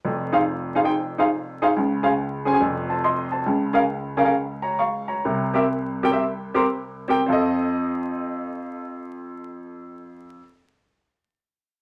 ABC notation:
X:1
M:4/4
L:1/16
Q:"Swing" 1/4=129
K:Cphr
V:1 name="Grand piano"
z2 [EAcf] z3 [EAcf] [EAcg] z2 [EAcf] z3 [EAcf] z | z2 [DAcf] z3 [DAca] [DAca] z2 [c=a]2 [ec']2 [ca]2- | [c=a]2 [D_ABf] z3 [DABf] [DABf] z2 [db]2 [fd']2 [db]2- | [db]2 [CGB=e] z3 [CGBg] [CGBe] z2 [CGBc] z3 [CGBg] z |
[CF=Ae]16- | [CF=Ae]16 |]
V:2 name="Grand piano" clef=bass
[F,,,F,,]16 | [D,,D,]8 [F,,,F,,]8 | [D,,D,]16 | [C,,C,]16 |
F,,16- | F,,16 |]